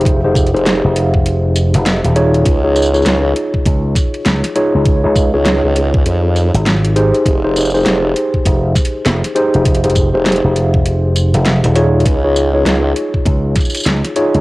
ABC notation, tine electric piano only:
X:1
M:4/4
L:1/16
Q:"Swing 16ths" 1/4=100
K:Fm
V:1 name="Tine electric piano"
[EGAc] [EGAc]2 [EGAc]8- [EGAc]3 [EFAd]2- | [EFAd] [EFAd]2 [EFAd]8- [EFAd]3 [EFAd]2- | [EFAd] [EFAd]2 [EFAd]8- [EFAd]3 [EGAc]2- | [EGAc] [EGAc]2 [EGAc]8- [EGAc]3 [EGAc]2- |
[EGAc] [EGAc]2 [EGAc]8- [EGAc]3 [EFAd]2- | [EFAd] [EFAd]2 [EFAd]8- [EFAd]3 [EFAd]2 |]